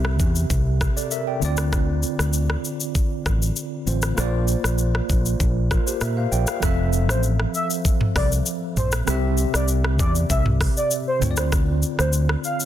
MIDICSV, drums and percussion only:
0, 0, Header, 1, 2, 480
1, 0, Start_track
1, 0, Key_signature, -1, "major"
1, 0, Tempo, 612245
1, 1355, Time_signature, 4, 2, 24, 8
1, 9919, End_track
2, 0, Start_track
2, 0, Title_t, "Drums"
2, 37, Note_on_c, 9, 37, 85
2, 115, Note_off_c, 9, 37, 0
2, 153, Note_on_c, 9, 82, 55
2, 154, Note_on_c, 9, 36, 97
2, 231, Note_off_c, 9, 82, 0
2, 232, Note_off_c, 9, 36, 0
2, 278, Note_on_c, 9, 82, 68
2, 357, Note_off_c, 9, 82, 0
2, 393, Note_on_c, 9, 36, 93
2, 393, Note_on_c, 9, 82, 67
2, 472, Note_off_c, 9, 36, 0
2, 472, Note_off_c, 9, 82, 0
2, 634, Note_on_c, 9, 36, 98
2, 636, Note_on_c, 9, 37, 86
2, 637, Note_on_c, 9, 82, 44
2, 713, Note_off_c, 9, 36, 0
2, 714, Note_off_c, 9, 37, 0
2, 715, Note_off_c, 9, 82, 0
2, 762, Note_on_c, 9, 82, 75
2, 841, Note_off_c, 9, 82, 0
2, 871, Note_on_c, 9, 82, 77
2, 949, Note_off_c, 9, 82, 0
2, 1116, Note_on_c, 9, 82, 60
2, 1194, Note_off_c, 9, 82, 0
2, 1231, Note_on_c, 9, 82, 76
2, 1238, Note_on_c, 9, 37, 91
2, 1309, Note_off_c, 9, 82, 0
2, 1316, Note_off_c, 9, 37, 0
2, 1353, Note_on_c, 9, 82, 83
2, 1354, Note_on_c, 9, 36, 111
2, 1354, Note_on_c, 9, 37, 84
2, 1432, Note_off_c, 9, 36, 0
2, 1432, Note_off_c, 9, 37, 0
2, 1432, Note_off_c, 9, 82, 0
2, 1590, Note_on_c, 9, 82, 55
2, 1668, Note_off_c, 9, 82, 0
2, 1718, Note_on_c, 9, 37, 81
2, 1724, Note_on_c, 9, 82, 75
2, 1797, Note_off_c, 9, 37, 0
2, 1803, Note_off_c, 9, 82, 0
2, 1828, Note_on_c, 9, 82, 73
2, 1906, Note_off_c, 9, 82, 0
2, 1958, Note_on_c, 9, 37, 84
2, 2036, Note_off_c, 9, 37, 0
2, 2073, Note_on_c, 9, 82, 55
2, 2152, Note_off_c, 9, 82, 0
2, 2198, Note_on_c, 9, 82, 68
2, 2277, Note_off_c, 9, 82, 0
2, 2313, Note_on_c, 9, 82, 63
2, 2314, Note_on_c, 9, 36, 87
2, 2392, Note_off_c, 9, 36, 0
2, 2392, Note_off_c, 9, 82, 0
2, 2555, Note_on_c, 9, 36, 96
2, 2556, Note_on_c, 9, 37, 87
2, 2557, Note_on_c, 9, 82, 44
2, 2633, Note_off_c, 9, 36, 0
2, 2635, Note_off_c, 9, 37, 0
2, 2636, Note_off_c, 9, 82, 0
2, 2683, Note_on_c, 9, 82, 70
2, 2761, Note_off_c, 9, 82, 0
2, 2792, Note_on_c, 9, 82, 78
2, 2870, Note_off_c, 9, 82, 0
2, 3036, Note_on_c, 9, 82, 59
2, 3115, Note_off_c, 9, 82, 0
2, 3152, Note_on_c, 9, 82, 77
2, 3159, Note_on_c, 9, 37, 90
2, 3230, Note_off_c, 9, 82, 0
2, 3237, Note_off_c, 9, 37, 0
2, 3275, Note_on_c, 9, 37, 84
2, 3275, Note_on_c, 9, 82, 88
2, 3353, Note_off_c, 9, 82, 0
2, 3354, Note_off_c, 9, 37, 0
2, 3510, Note_on_c, 9, 82, 57
2, 3589, Note_off_c, 9, 82, 0
2, 3639, Note_on_c, 9, 37, 84
2, 3646, Note_on_c, 9, 82, 79
2, 3718, Note_off_c, 9, 37, 0
2, 3724, Note_off_c, 9, 82, 0
2, 3749, Note_on_c, 9, 82, 75
2, 3828, Note_off_c, 9, 82, 0
2, 3880, Note_on_c, 9, 37, 83
2, 3958, Note_off_c, 9, 37, 0
2, 3995, Note_on_c, 9, 36, 98
2, 3995, Note_on_c, 9, 82, 53
2, 4073, Note_off_c, 9, 82, 0
2, 4074, Note_off_c, 9, 36, 0
2, 4120, Note_on_c, 9, 82, 67
2, 4198, Note_off_c, 9, 82, 0
2, 4235, Note_on_c, 9, 36, 93
2, 4235, Note_on_c, 9, 82, 65
2, 4313, Note_off_c, 9, 36, 0
2, 4313, Note_off_c, 9, 82, 0
2, 4476, Note_on_c, 9, 36, 94
2, 4477, Note_on_c, 9, 37, 87
2, 4478, Note_on_c, 9, 82, 45
2, 4554, Note_off_c, 9, 36, 0
2, 4555, Note_off_c, 9, 37, 0
2, 4557, Note_off_c, 9, 82, 0
2, 4604, Note_on_c, 9, 82, 75
2, 4683, Note_off_c, 9, 82, 0
2, 4712, Note_on_c, 9, 82, 78
2, 4714, Note_on_c, 9, 37, 89
2, 4791, Note_off_c, 9, 82, 0
2, 4793, Note_off_c, 9, 37, 0
2, 4957, Note_on_c, 9, 82, 59
2, 5036, Note_off_c, 9, 82, 0
2, 5073, Note_on_c, 9, 82, 76
2, 5079, Note_on_c, 9, 37, 87
2, 5151, Note_off_c, 9, 82, 0
2, 5158, Note_off_c, 9, 37, 0
2, 5195, Note_on_c, 9, 36, 116
2, 5195, Note_on_c, 9, 82, 91
2, 5196, Note_on_c, 9, 37, 97
2, 5274, Note_off_c, 9, 36, 0
2, 5274, Note_off_c, 9, 37, 0
2, 5274, Note_off_c, 9, 82, 0
2, 5431, Note_on_c, 9, 82, 60
2, 5510, Note_off_c, 9, 82, 0
2, 5560, Note_on_c, 9, 37, 89
2, 5566, Note_on_c, 9, 82, 78
2, 5638, Note_off_c, 9, 37, 0
2, 5644, Note_off_c, 9, 82, 0
2, 5669, Note_on_c, 9, 82, 76
2, 5747, Note_off_c, 9, 82, 0
2, 5798, Note_on_c, 9, 37, 84
2, 5877, Note_off_c, 9, 37, 0
2, 5913, Note_on_c, 9, 82, 57
2, 5992, Note_off_c, 9, 82, 0
2, 6039, Note_on_c, 9, 82, 71
2, 6118, Note_off_c, 9, 82, 0
2, 6154, Note_on_c, 9, 36, 90
2, 6154, Note_on_c, 9, 82, 70
2, 6233, Note_off_c, 9, 36, 0
2, 6233, Note_off_c, 9, 82, 0
2, 6277, Note_on_c, 9, 45, 95
2, 6356, Note_off_c, 9, 45, 0
2, 6395, Note_on_c, 9, 36, 102
2, 6396, Note_on_c, 9, 37, 96
2, 6398, Note_on_c, 9, 46, 46
2, 6398, Note_on_c, 9, 82, 47
2, 6474, Note_off_c, 9, 36, 0
2, 6475, Note_off_c, 9, 37, 0
2, 6476, Note_off_c, 9, 46, 0
2, 6476, Note_off_c, 9, 82, 0
2, 6523, Note_on_c, 9, 82, 77
2, 6602, Note_off_c, 9, 82, 0
2, 6632, Note_on_c, 9, 82, 79
2, 6710, Note_off_c, 9, 82, 0
2, 6876, Note_on_c, 9, 45, 83
2, 6877, Note_on_c, 9, 82, 65
2, 6954, Note_off_c, 9, 45, 0
2, 6955, Note_off_c, 9, 82, 0
2, 6992, Note_on_c, 9, 82, 80
2, 6999, Note_on_c, 9, 37, 95
2, 7070, Note_off_c, 9, 82, 0
2, 7077, Note_off_c, 9, 37, 0
2, 7114, Note_on_c, 9, 82, 90
2, 7115, Note_on_c, 9, 37, 93
2, 7193, Note_off_c, 9, 82, 0
2, 7194, Note_off_c, 9, 37, 0
2, 7350, Note_on_c, 9, 82, 62
2, 7428, Note_off_c, 9, 82, 0
2, 7479, Note_on_c, 9, 37, 87
2, 7485, Note_on_c, 9, 82, 78
2, 7557, Note_off_c, 9, 37, 0
2, 7563, Note_off_c, 9, 82, 0
2, 7588, Note_on_c, 9, 82, 76
2, 7667, Note_off_c, 9, 82, 0
2, 7718, Note_on_c, 9, 37, 88
2, 7797, Note_off_c, 9, 37, 0
2, 7834, Note_on_c, 9, 82, 55
2, 7835, Note_on_c, 9, 36, 98
2, 7913, Note_off_c, 9, 82, 0
2, 7914, Note_off_c, 9, 36, 0
2, 7960, Note_on_c, 9, 82, 72
2, 8038, Note_off_c, 9, 82, 0
2, 8074, Note_on_c, 9, 36, 94
2, 8075, Note_on_c, 9, 82, 70
2, 8153, Note_off_c, 9, 36, 0
2, 8153, Note_off_c, 9, 82, 0
2, 8198, Note_on_c, 9, 45, 88
2, 8276, Note_off_c, 9, 45, 0
2, 8315, Note_on_c, 9, 36, 97
2, 8316, Note_on_c, 9, 37, 93
2, 8317, Note_on_c, 9, 46, 46
2, 8317, Note_on_c, 9, 82, 47
2, 8394, Note_off_c, 9, 36, 0
2, 8395, Note_off_c, 9, 37, 0
2, 8396, Note_off_c, 9, 46, 0
2, 8396, Note_off_c, 9, 82, 0
2, 8444, Note_on_c, 9, 82, 77
2, 8522, Note_off_c, 9, 82, 0
2, 8552, Note_on_c, 9, 82, 80
2, 8631, Note_off_c, 9, 82, 0
2, 8795, Note_on_c, 9, 45, 85
2, 8797, Note_on_c, 9, 82, 62
2, 8874, Note_off_c, 9, 45, 0
2, 8875, Note_off_c, 9, 82, 0
2, 8911, Note_on_c, 9, 82, 81
2, 8918, Note_on_c, 9, 37, 92
2, 8990, Note_off_c, 9, 82, 0
2, 8997, Note_off_c, 9, 37, 0
2, 9034, Note_on_c, 9, 82, 91
2, 9035, Note_on_c, 9, 36, 121
2, 9035, Note_on_c, 9, 37, 92
2, 9112, Note_off_c, 9, 82, 0
2, 9113, Note_off_c, 9, 36, 0
2, 9113, Note_off_c, 9, 37, 0
2, 9270, Note_on_c, 9, 82, 59
2, 9348, Note_off_c, 9, 82, 0
2, 9398, Note_on_c, 9, 37, 89
2, 9404, Note_on_c, 9, 82, 80
2, 9477, Note_off_c, 9, 37, 0
2, 9483, Note_off_c, 9, 82, 0
2, 9508, Note_on_c, 9, 82, 75
2, 9587, Note_off_c, 9, 82, 0
2, 9638, Note_on_c, 9, 37, 90
2, 9716, Note_off_c, 9, 37, 0
2, 9753, Note_on_c, 9, 82, 55
2, 9832, Note_off_c, 9, 82, 0
2, 9879, Note_on_c, 9, 82, 71
2, 9919, Note_off_c, 9, 82, 0
2, 9919, End_track
0, 0, End_of_file